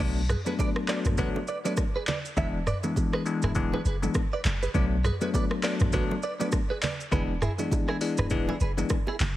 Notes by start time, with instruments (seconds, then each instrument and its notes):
0.00 sub bass B1, tine electric piano F#3 A3 B3 D4, clean electric guitar B4 D5, low conga
0.29 clean electric guitar G#4 B4, cross-stick, mid tom, shaker
0.46 tine electric piano F#3 A3 B3 D4, clean electric guitar G#4 B4, high bongo, low bongo, shaker
0.59 clean electric guitar B4 D5, kick, high bongo, shaker
0.76 cross-stick
0.88 tine electric piano F#3 A3 B3 D4, clean electric guitar B4 D5, cross-stick, clap, shaker
1.05 sub bass A1, cross-stick, mid tom, shaker
1.17 tine electric piano F#3 A3 B3 D4, clean electric guitar F#4 B4, kick, low conga, shaker
1.36 low bongo
1.47 clean electric guitar B4 D5, shaker
1.65 tine electric piano F#3 A3 B3 D4, clean electric guitar B4 D5, low bongo, shaker
1.77 kick, cross-stick, high bongo, shaker
1.96 clean electric guitar G#4 B4
2.07 clean electric guitar B4 D5, clap, low bongo, low conga, shaker
2.25 shaker
2.37 sub bass E1, tine electric piano E3 G#3 B3 D4, clean electric guitar B4 E5, kick, low conga, shaker
2.67 clean electric guitar B4 D5, cross-stick, mid tom, shaker
2.83 tine electric piano E3 G#3 B3 D4, high bongo, low bongo, shaker
2.96 kick, high bongo, shaker
3.13 clean electric guitar G#4 B4, cross-stick
3.25 tine electric piano E3 G#3 B3 D4, shaker
3.42 sub bass D1, clean electric guitar E4 G#4, cross-stick, mid tom, shaker
3.55 tine electric piano E3 G#3 B3 D4, kick, low conga, shaker
3.73 clean electric guitar G#4 B4, low bongo
3.85 sub bass F#1, clean electric guitar G#4 B4, shaker
4.02 tine electric piano E3 G#3 B3 D4, low bongo, shaker
4.14 kick, cross-stick, high bongo, shaker
4.33 clean electric guitar B4 D5
4.45 sub bass F#1, clap, low bongo, low conga, shaker
4.63 clean electric guitar G#4 B4, shaker
4.74 sub bass B1, tine electric piano F#3 A3 B3 D4, clean electric guitar B4 D5, kick, low conga, shaker
5.04 clean electric guitar G#4 B4, cross-stick, mid tom, shaker
5.21 tine electric piano F#3 A3 B3 D4, clean electric guitar G#4 B4, high bongo, low bongo, shaker
5.34 clean electric guitar B4 D5, kick, high bongo, shaker
5.51 cross-stick
5.63 tine electric piano F#3 A3 B3 D4, clean electric guitar B4 D5, cross-stick, clap, open hi-hat, shaker
5.80 sub bass A1, cross-stick, mid tom, shaker
5.92 tine electric piano F#3 A3 B3 D4, clean electric guitar F#4 B4, kick, low conga, shaker
6.11 low bongo
6.23 clean electric guitar B4 D5, shaker
6.40 tine electric piano F#3 A3 B3 D4, clean electric guitar B4 D5, low bongo, shaker
6.52 kick, cross-stick, high bongo, shaker
6.70 clean electric guitar G#4 B4
6.82 clean electric guitar B4 D5, clap, open hi-hat, low bongo, low conga, shaker
7.00 shaker
7.12 sub bass E1, tine electric piano E3 G#3 B3 D4, clean electric guitar G#4 B4, kick, low conga, shaker
7.42 clean electric guitar E4 G#4, cross-stick, mid tom, shaker
7.59 tine electric piano E3 G#3 B3 D4, high bongo, low bongo, shaker
7.71 kick, high bongo, shaker
7.88 clean electric guitar E4 G#4, cross-stick
8.01 tine electric piano E3 G#3 B3 D4, open hi-hat, shaker
8.17 sub bass D1, clean electric guitar G#4 B4, cross-stick, mid tom, shaker
8.30 tine electric piano E3 G#3 B3 D4, kick, low conga, shaker
8.49 clean electric guitar E4 G#4, low bongo
8.60 sub bass F#1, clean electric guitar G#4 B4, shaker
8.77 tine electric piano E3 G#3 B3 D4, low bongo, shaker
8.89 kick, cross-stick, high bongo, shaker
9.07 clean electric guitar E4 G#4, high bongo
9.20 sub bass F#1, clap, open hi-hat, low bongo, low conga, shaker